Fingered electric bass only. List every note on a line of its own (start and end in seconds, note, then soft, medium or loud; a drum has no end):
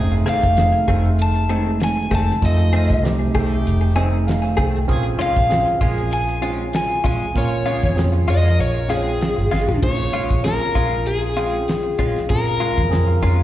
0.00 0.24 F1 medium
0.43 0.71 F1 medium
0.88 2.07 F1 medium
2.11 2.27 F1 medium
2.42 2.92 F2 medium
2.90 3.31 C2 medium
3.35 3.63 C2 medium
3.66 4.54 F1 medium
4.58 4.86 C2 medium
4.89 5.17 A#1 loud
5.20 muted fingered electric bass stroke soft
5.37 5.64 A#1 medium
5.81 7.01 A#1 medium
7.04 7.20 A#1 medium
7.35 7.85 A#2 loud
7.83 8.24 F2 medium
8.28 8.56 F2 medium
8.59 9.34 A#1 medium
9.38 9.50 G1 medium
9.52 9.67 G#1 medium
9.69 9.81 A#1 medium
9.83 10.10 A#1 medium
10.14 muted fingered electric bass stroke soft
10.31 10.58 A#1 medium
10.76 11.95 A#1 medium
11.99 12.14 A#1 medium
12.30 12.80 A#2 medium
12.78 13.19 F2 medium
13.22 13.43 F2 medium